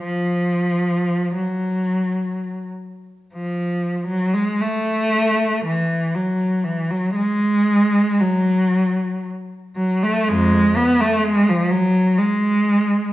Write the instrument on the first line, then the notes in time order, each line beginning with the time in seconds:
cello
0.04 F3
1.38 F#3
3.34 F3
4.07 F#3
4.34 G#3
4.61 A3
5.65 E3
6.15 F#3
6.64 E3
6.90 F#3
7.16 G#3
8.20 F#3
9.76 F#3
10.03 A3
10.29 F2 G#3
10.77 B3
11.01 A3
11.25 G#3
11.49 F3
11.70 F#3
12.18 G#3